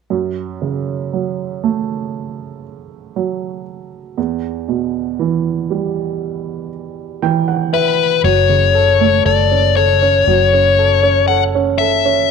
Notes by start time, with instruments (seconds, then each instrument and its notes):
0.10 upright piano F#2
0.62 upright piano C#3
1.13 upright piano F#3
1.64 upright piano A3
3.16 upright piano F#3
4.17 upright piano E2
4.68 upright piano B2
5.19 upright piano E3
5.70 upright piano G3
7.22 upright piano E3 G5
7.48 upright piano F#5
7.73 lead electric guitar B4, upright piano E5
8.24 fingered electric bass F#1, upright piano F#3, lead electric guitar C#5
8.49 upright piano C#3
8.75 upright piano A4
9.00 upright piano A3
9.26 fingered electric bass F#1, upright piano A4, lead electric guitar D5
9.51 upright piano C#4
9.76 upright piano A4, lead electric guitar C#5
10.02 upright piano C#4
10.27 fingered electric bass F#1, upright piano F#3
10.53 upright piano C#4
10.78 upright piano A4
11.03 upright piano C#4
11.28 upright piano A4, lead electric guitar F#5
11.55 upright piano C#4
11.78 upright piano A4, lead electric guitar E5
12.05 upright piano C#4